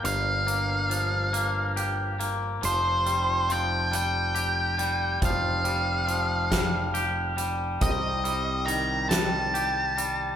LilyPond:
<<
  \new Staff \with { instrumentName = "Lead electric guitar" } { \time 6/8 \key f \mixolydian \tempo 4. = 46 f''2~ f''8 r8 | c''4 g''8 g''4. | f''2~ f''8 r8 | ees''4 bes''8 a''4. | }
  \new Staff \with { instrumentName = "Clean electric guitar" } { \clef bass \time 6/8 \key f \mixolydian <g, f bes g'>8 bes8 f8 bes8 g'8 bes8 | f8 g8 f8 g8 g'8 g8 | f8 g8 f8 g8 g'8 g8 | c8 g8 ees8 g8 g'8 g8 | }
  \new Staff \with { instrumentName = "Fingered electric bass" } { \clef bass \time 6/8 \key f \mixolydian g,,2. | f,,2. | f,,2. | c,2. | }
  \new DrumStaff \with { instrumentName = "Drums" } \drummode { \time 6/8 hh8 hh8 hh8 hh8 hh8 hh8 | hh8 hh8 hh8 hh8 hh8 hh8 | <hh bd>8 hh8 hh8 <hh bd sn>8 hh8 hh8 | <hh bd>8 hh8 hh8 <hh sn>8 hh8 hh8 | }
>>